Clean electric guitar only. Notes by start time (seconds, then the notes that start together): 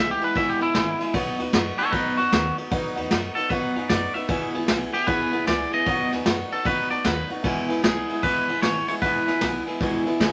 0.11 G4
0.24 B4
0.37 E5
0.50 G4
0.62 E4
1.78 A4 C#5
1.91 D#4 B4
2.17 F#4
3.35 A4
3.50 B4
3.89 D5
4.14 E5
4.94 G4
5.07 B4
5.48 D5
5.74 D#5
6.53 A4
6.66 B4
6.91 D5
7.05 B4
7.84 G#4
8.23 B4
8.62 C#5
8.89 C#5
9.02 B4